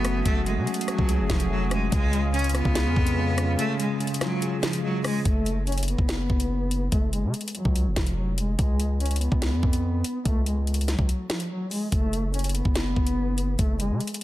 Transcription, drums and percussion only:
0.05 cross-stick loud
0.05 closed hi-hat medium
0.26 kick loud
0.26 closed hi-hat medium
0.46 closed hi-hat medium
0.67 closed hi-hat soft
0.74 closed hi-hat medium
0.81 closed hi-hat medium
0.88 cross-stick medium
0.88 closed hi-hat medium
0.98 kick medium
1.09 closed hi-hat medium
1.30 kick medium
1.30 snare loud
1.30 closed hi-hat medium
1.40 closed hi-hat medium
1.71 cross-stick loud
1.71 closed hi-hat medium
1.92 kick loud
1.92 closed hi-hat medium
2.13 closed hi-hat medium
2.34 closed hi-hat medium
2.39 closed hi-hat medium
2.44 closed hi-hat medium
2.49 closed hi-hat medium
2.55 cross-stick medium
2.55 closed hi-hat medium
2.65 kick medium
2.75 snare loud
2.75 closed hi-hat medium
2.96 kick medium
3.07 closed hi-hat medium
3.38 cross-stick loud
3.38 closed hi-hat medium
3.59 closed hi-hat medium
3.80 closed hi-hat medium
4.00 closed hi-hat soft
4.07 closed hi-hat medium
4.14 closed hi-hat medium
4.21 cross-stick medium
4.21 snare medium
4.21 closed hi-hat medium
4.42 closed hi-hat medium
4.63 snare loud
4.63 closed hi-hat medium
4.73 closed hi-hat medium
5.04 cross-stick loud
5.04 open hi-hat medium
5.25 kick loud
5.25 closed hi-hat medium
5.46 closed hi-hat medium
5.67 closed hi-hat soft
5.72 closed hi-hat medium
5.78 closed hi-hat medium
5.83 closed hi-hat medium
5.88 closed hi-hat medium
5.99 kick medium
6.09 snare loud
6.09 closed hi-hat medium
6.30 kick medium
6.40 closed hi-hat medium
6.71 closed hi-hat medium
6.92 kick loud
6.92 closed hi-hat medium
7.13 closed hi-hat medium
7.34 closed hi-hat soft
7.41 closed hi-hat medium
7.48 closed hi-hat medium
7.55 closed hi-hat medium
7.65 kick medium
7.76 closed hi-hat medium
7.96 kick medium
7.96 snare loud
7.96 closed hi-hat medium
8.07 closed hi-hat medium
8.38 closed hi-hat medium
8.59 kick loud
8.59 closed hi-hat medium
8.80 closed hi-hat medium
9.00 closed hi-hat soft
9.06 closed hi-hat medium
9.11 closed hi-hat medium
9.16 closed hi-hat medium
9.21 closed hi-hat medium
9.32 kick medium
9.42 snare loud
9.42 closed hi-hat medium
9.63 kick medium
9.73 closed hi-hat medium
10.04 closed hi-hat medium
10.25 kick loud
10.25 closed hi-hat medium
10.46 closed hi-hat medium
10.67 closed hi-hat soft
10.74 closed hi-hat medium
10.81 closed hi-hat medium
10.88 snare medium
10.88 closed hi-hat medium
10.99 kick medium
11.09 closed hi-hat medium
11.30 snare loud
11.30 closed hi-hat medium
11.40 closed hi-hat medium
11.71 open hi-hat medium
11.92 kick loud
11.92 closed hi-hat medium
12.13 closed hi-hat medium
12.34 closed hi-hat soft
12.39 closed hi-hat medium
12.44 closed hi-hat medium
12.49 closed hi-hat medium
12.55 closed hi-hat medium
12.65 kick medium
12.75 snare loud
12.75 closed hi-hat medium
12.96 kick medium
13.07 closed hi-hat medium
13.38 closed hi-hat medium
13.59 kick loud
13.59 closed hi-hat medium
13.80 closed hi-hat medium
14.00 closed hi-hat soft
14.07 closed hi-hat medium
14.14 closed hi-hat medium

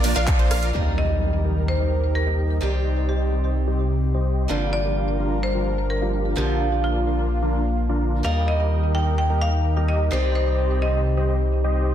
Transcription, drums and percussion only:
0.04 open hi-hat loud
0.16 closed hi-hat soft
0.27 kick loud
0.27 clap loud
0.27 closed hi-hat loud
0.39 closed hi-hat soft
0.51 cross-stick medium
0.51 open hi-hat medium
0.63 closed hi-hat soft

